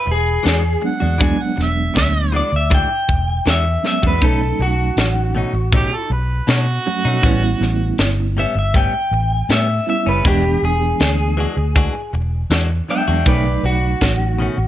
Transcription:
0.06 E1, muted clean electric guitar stroke
0.11 G#4
0.43 E2 E3 G#3 D4 F#4, snare, closed hi-hat
0.64 muted clean electric guitar stroke
0.81 F#3 G#3 B3 D4, muted clean electric guitar stroke
0.86 F#5
1.00 E2 G#3 D4 F#4
1.18 E3 F#3 G#3 B3 D4 F#4, kick, closed hi-hat
1.24 G#5
1.38 muted clean electric guitar stroke
1.42 F#5
1.56 E1, muted clean electric guitar stroke, snare
1.63 E5
1.94 D2 E5, muted clean electric guitar stroke, kick, snare, closed hi-hat
2.32 E3 G#3 D4 F#4 D5
2.52 D2, muted clean electric guitar stroke
2.56 E5
2.70 E3 G#3 D4 F#4, kick, closed hi-hat
2.74 G5
2.90 muted clean electric guitar stroke
3.08 E1, muted clean electric guitar stroke, kick
3.46 E2 E3 G#3 D4 F#4, snare, closed hi-hat
3.50 E5
3.66 muted clean electric guitar stroke
3.83 F#3 G#3 B3 C#4, muted clean electric guitar stroke, snare
3.88 E5
4.03 E2 G#3 D4 F#4, kick
4.07 B4
4.21 B1 B2 F#3 A3 C#4 D#4 A4, kick, closed hi-hat
4.41 muted clean electric guitar stroke
4.59 B1 F#4, muted clean electric guitar stroke
4.97 A1, muted clean electric guitar stroke, snare, closed hi-hat
5.35 B2 A3 C#4 D#4
5.53 A1, muted clean electric guitar stroke
5.72 B2 A3 C#4 D#4 G4, kick, closed hi-hat
5.92 A4, muted clean electric guitar stroke
6.10 B1 B4, muted clean electric guitar stroke
6.47 B2 A3 C#4 D#4 F#4, snare, closed hi-hat
6.86 F#3 A3 C#4 F#4, muted clean electric guitar stroke
7.05 B2 A3 C#4 D#4
7.22 A1 A2 G3 B3 C#4 E4, kick, closed hi-hat
7.44 muted clean electric guitar stroke
7.61 A1, muted clean electric guitar stroke, snare
7.98 G1, muted clean electric guitar stroke, snare, closed hi-hat
8.37 A2 G3 B3 C#4 E5
8.55 G1 E5, muted clean electric guitar stroke
8.74 A2 G3 B3 C#4 G5, kick, closed hi-hat
8.94 muted clean electric guitar stroke
9.11 A1, muted clean electric guitar stroke
9.49 A2 G3 B3 C#4 E5, snare, closed hi-hat
9.69 muted clean electric guitar stroke
9.87 G3 B3 C#4 E4 E5, muted clean electric guitar stroke
10.06 F#1 G3 B3 C#4 B4
10.25 E1 E3 G#3 B3 D4 F#4 G4, kick, closed hi-hat
10.45 muted clean electric guitar stroke
10.62 E1 G#4, muted clean electric guitar stroke
11.00 D2, muted clean electric guitar stroke, snare, closed hi-hat
11.37 E3 G#3 D4 F#4
11.57 D2, muted clean electric guitar stroke
11.76 E3 G#3 D4 F#4, kick, closed hi-hat
11.95 muted clean electric guitar stroke
12.13 E1, muted clean electric guitar stroke
12.50 E2 E3 G#3 D4 F#4, snare, closed hi-hat
12.70 muted clean electric guitar stroke
12.89 F#3 G#3 B3 D4 E5 G5, muted clean electric guitar stroke
13.08 E2 G#3 D4 F#4
13.26 B1 B2 C#3 D#3 F#3 A3 C#4 D#4 B4 D5, kick, closed hi-hat
13.45 muted clean electric guitar stroke
13.63 B1 F#4, muted clean electric guitar stroke
14.01 A1, muted clean electric guitar stroke, kick, snare, closed hi-hat
14.39 B2 D#3 A3 C#4
14.58 A1, muted clean electric guitar stroke

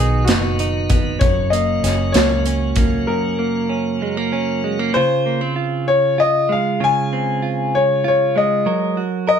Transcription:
Already playing: B1 B2 D#3 F#3 B3 D#4 F#4 G#4
0.25 F#1 B3 F#4, closed hi-hat
0.29 snare
0.59 D#4, closed hi-hat
0.90 B3, kick, closed hi-hat
1.19 F#1 F#2 C#3 A#3 C#5, kick, closed hi-hat
1.50 A#3 D#5, closed hi-hat
1.84 F#1 C#4, snare, closed hi-hat
2.12 C#2 A#3 C#5, snare, closed hi-hat
2.46 C#4, closed hi-hat
2.76 A#3, kick, closed hi-hat
3.07 F#2 A#4
3.39 A#3
3.69 C#4
4.02 G#3
4.17 A#3
4.32 C#4
4.64 G#3
4.79 A#3
4.94 C#3 F4 C5
5.26 A#3
5.41 C4
5.56 F4
5.88 C#5
6.18 F4 D#5
6.49 G#3 F5
6.80 C#3 F4 G#5
7.13 C4
7.42 F4
7.75 C#5
8.04 F4 C#5
8.36 G#3 D#5
8.66 F#3 A#4
8.97 F#4
9.27 A#4 D#5

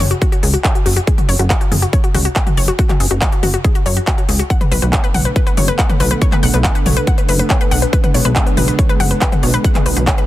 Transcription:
0.00 F#1 C#5, open hi-hat, mid tom
0.11 F#4, closed hi-hat
0.21 F#4, kick, closed hi-hat
0.32 F#4, closed hi-hat
0.43 C#2 G#4, open hi-hat
0.54 F#4, closed hi-hat
0.64 C#5, kick, clap, closed hi-hat
0.75 F#4, closed hi-hat
0.86 F#1 F#4, open hi-hat
0.97 F#4, closed hi-hat
1.07 G#4, kick, closed hi-hat
1.18 F#4, closed hi-hat, mid tom
1.29 F#1 C#5, open hi-hat
1.39 F#1 F#4, closed hi-hat
1.50 F#4, kick, clap, closed hi-hat
1.61 F#4, closed hi-hat
1.72 F#1 G#4, open hi-hat, mid tom
1.82 F#4, closed hi-hat
1.93 C#5, kick, closed hi-hat
2.04 F#4, closed hi-hat
2.14 C#2 F#4, open hi-hat, mid tom
2.25 F#4, closed hi-hat
2.36 G#4, kick, clap, closed hi-hat
2.47 F#4, closed hi-hat, mid tom
2.57 F#1 C#5, open hi-hat
2.68 F#4, closed hi-hat
2.79 F#4, kick, closed hi-hat
2.89 F#4, clap, closed hi-hat, mid tom
3.00 F#1 G#4, open hi-hat
3.11 F#1 F#4, closed hi-hat
3.22 C#5, kick, clap, closed hi-hat
3.32 F#4, closed hi-hat
3.43 F#1 F#4, open hi-hat, mid tom
3.54 F#4, closed hi-hat
3.64 G#4, kick, closed hi-hat
3.75 F#4, closed hi-hat
3.86 F#2 C#5, open hi-hat
3.97 F#4, closed hi-hat
4.07 F#4, kick, clap, closed hi-hat
4.18 F#4, closed hi-hat
4.29 C#2 G#4, open hi-hat
4.39 F#4, closed hi-hat
4.50 D3 A3 B3 F#5, kick, closed hi-hat
4.61 B4, closed hi-hat, mid tom
4.72 B1 B4, open hi-hat
4.82 B1 B4, closed hi-hat
4.93 C#5, kick, clap, closed hi-hat
5.04 B4, closed hi-hat
5.14 B1 F#5, open hi-hat, mid tom
5.25 B4, closed hi-hat
5.36 B4, kick, closed hi-hat
5.47 B4, closed hi-hat
5.57 F#1 C#5, open hi-hat, mid tom
5.68 B4, closed hi-hat
5.79 F#5, kick, clap, closed hi-hat
5.89 B4, closed hi-hat, mid tom
6.00 B1 B4, open hi-hat
6.11 B4, closed hi-hat
6.22 C#5, kick, closed hi-hat
6.32 B4, clap, closed hi-hat, mid tom
6.43 B1 F#5, open hi-hat
6.54 B1 B4, closed hi-hat
6.64 B4, kick, clap, closed hi-hat
6.75 B4, closed hi-hat
6.86 B1 C#5, open hi-hat, mid tom
6.97 B4, closed hi-hat
7.07 F#5, kick, closed hi-hat
7.18 B4, closed hi-hat
7.29 F#1 B4, open hi-hat
7.39 B4, closed hi-hat
7.50 C#5, kick, clap, closed hi-hat
7.61 B4, closed hi-hat
7.71 B1 F#5, open hi-hat
7.82 B4, closed hi-hat
7.93 G#3 B4, kick, closed hi-hat
8.04 B4, closed hi-hat, mid tom
8.14 B1 C#5, open hi-hat
8.25 B1 B4, closed hi-hat
8.36 F#5, kick, clap, closed hi-hat
8.46 B4, closed hi-hat
8.57 B1 B4, open hi-hat, mid tom
8.68 B4, closed hi-hat
8.79 C#5, kick, closed hi-hat
8.89 B4, closed hi-hat
9.00 F#1 F#5, open hi-hat, mid tom
9.11 B4, closed hi-hat
9.21 B4, kick, clap, closed hi-hat
9.32 B4, closed hi-hat, mid tom
9.43 B1 C#5, open hi-hat
9.54 B4, closed hi-hat
9.64 F#5, kick, closed hi-hat
9.75 B4, clap, closed hi-hat, mid tom
9.86 B1 B4, open hi-hat
9.97 B1 B4, closed hi-hat
10.07 C#5, kick, clap, closed hi-hat
10.18 B4, closed hi-hat

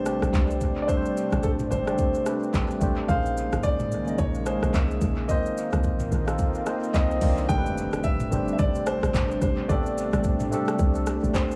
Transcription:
Already playing: A1 C3 G3 A3 C4 D4 G4 B4 C5
0.05 A3 C4 D4 G4 D5, cross-stick, shaker
0.22 A1, cross-stick, shaker
0.34 C2, kick, clap, shaker
0.50 shaker
0.61 A1, kick, shaker
0.82 D5
0.87 A3 C4 D4 G4 A4 C5, kick, shaker
0.97 C5
1.06 shaker
1.17 shaker
1.32 A1, cross-stick, shaker
1.43 A4, kick, shaker
1.59 mid tom, shaker
1.71 G1 C5, shaker
1.86 A3 C4 D4 G4 D5, cross-stick, shaker
1.98 kick, shaker
2.15 shaker
2.25 A3 C4 D4 G4 B4, cross-stick, shaker
2.43 shaker
2.54 A1 A5, kick, clap, shaker
2.71 shaker
2.80 A1 A3 C4 D4 G4 C5, kick, shaker
3.07 A#1 C#3 D#3 G#3 A#3 C#4 D#4 G#4 C5 F5, kick, shaker
3.26 shaker
3.37 shaker
3.52 G#1, cross-stick, shaker
3.63 D5, kick, shaker
3.80 mid tom, shaker
3.91 C2, shaker
4.06 A#3 C#4 D#4 G#4 D#5, shaker
4.18 A#1 C#5, kick, shaker
4.35 shaker
4.45 D#3 A#3 C#4 G#4 C5 C#5, cross-stick, shaker
4.63 A#1, cross-stick, shaker
4.73 C2 E5, kick, clap, shaker
4.91 shaker
5.01 A#1, kick, shaker
5.28 D#3 A#3 C4 D#4 F4 C5 D#5, kick, swell, shaker
5.46 shaker
5.57 shaker
5.73 C2, cross-stick, shaker
5.83 kick, shaker
6.00 mid tom, shaker
6.12 A#1, shaker
6.26 A#3 C4 D#4 F4 A4, cross-stick, shaker
6.38 kick, shaker
6.55 shaker
6.65 A#3 C4 D#4 F4 C5 D#5, cross-stick, shaker
6.84 shaker
6.94 C2 D#5 G5, kick, clap, shaker
7.11 shaker
7.20 C2 A#3 D4 D#4 F4 D5 A#5, kick, open hi-hat, shaker
7.38 shaker
7.48 A1 C3 G3 A3 C4 D4 G4 A#4 G5, kick, impact, shaker
7.58 B4
7.66 shaker
7.78 shaker
7.93 cross-stick, shaker
8.04 E5, kick, shaker
8.20 mid tom, shaker
8.30 G1 A3 C4 D4 G4 C5, shaker
8.48 shaker
8.53 E5
8.59 A1 D5, kick, shaker
8.75 shaker
8.86 C5, cross-stick, shaker
9.03 A1, cross-stick, shaker
9.14 G1, kick, clap, shaker
9.31 shaker
9.41 A1 C5, kick, shaker
9.68 A1 A3 B3 D4 G4 A4 D5, kick, shaker
9.75 C4
9.86 shaker
9.98 shaker
10.13 A1, cross-stick, shaker
10.24 kick, shaker
10.40 mid tom, shaker
10.51 A3 C4 D4 G4 A4, shaker
10.68 cross-stick, shaker
10.79 C2, kick, shaker
10.95 shaker
11.06 cross-stick, shaker
11.23 A1, shaker
11.34 C5, kick, clap, shaker
11.51 shaker

